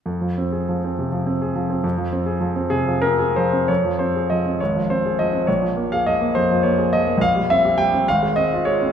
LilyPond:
<<
  \new Staff \with { instrumentName = "Grand piano" } { \time 6/8 \key f \minor \tempo 4. = 68 r2. | r4. aes'8 bes'8 c''8 | des''8 c''8 ees''8 des''8 c''8 ees''8 | des''8. f''16 ees''8 c''8 des''8 ees''8 |
f''8 e''8 g''8 f''8 ees''8 des''8 | }
  \new Staff \with { instrumentName = "Grand piano" } { \time 6/8 \key f \minor f,16 f16 c'16 aes'16 f16 c'16 c16 f16 c'16 aes'16 f16 c'16 | f,16 f16 c'16 aes'16 f16 c'16 c16 f16 c'16 aes'16 f16 c'16 | f,16 f16 c'16 aes'16 f16 c'16 aes,,16 f16 c'16 aes'16 f16 c'16 | bes,,16 f16 bes16 aes'16 f16 bes16 f,16 f16 bes16 aes'16 f16 bes16 |
bes,,16 g16 c'16 g'16 g16 c'16 aes,,16 aes16 c'16 f'16 aes16 c'16 | }
>>